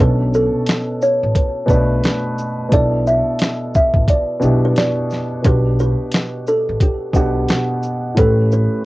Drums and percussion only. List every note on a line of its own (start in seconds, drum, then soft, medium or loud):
0.34 shaker soft
0.66 snare loud
0.66 closed hi-hat medium
1.02 shaker soft
1.35 kick medium
1.35 closed hi-hat medium
1.68 kick medium
1.68 shaker medium
2.04 snare loud
2.04 closed hi-hat soft
2.38 shaker soft
2.72 kick loud
2.72 closed hi-hat medium
3.07 shaker soft
3.39 snare loud
3.39 closed hi-hat medium
3.74 kick medium
3.74 shaker soft
3.94 kick medium
4.08 kick medium
4.08 closed hi-hat medium
4.42 shaker medium
4.76 snare medium
4.76 closed hi-hat medium
5.10 snare soft
5.10 shaker soft
5.44 kick loud
5.44 closed hi-hat medium
5.79 shaker soft
6.11 snare loud
6.11 closed hi-hat medium
6.47 shaker soft
6.80 kick medium
6.80 closed hi-hat medium
7.13 kick medium
7.13 shaker medium
7.49 snare loud
7.49 closed hi-hat soft
7.83 shaker soft
8.17 kick loud
8.17 closed hi-hat medium
8.52 shaker soft